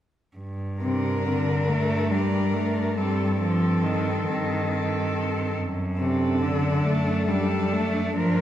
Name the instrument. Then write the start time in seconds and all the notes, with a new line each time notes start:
cello
0.37 G2
0.81 C3 D4 A#4
1.26 D3
1.69 G2 A3
2.11 G3 D4 A#4
2.54 A3
2.97 G2 G3 C4 A4
3.40 F3 C4 A4
3.84 D#3
4.27 G2 D#3
4.69 C4 A4
5.57 F#2
5.99 C3 D4 A4
6.41 D3
6.85 F#2 A3
7.28 G3 D4 A4
7.73 A3
8.16 G2 F3 D4 A#4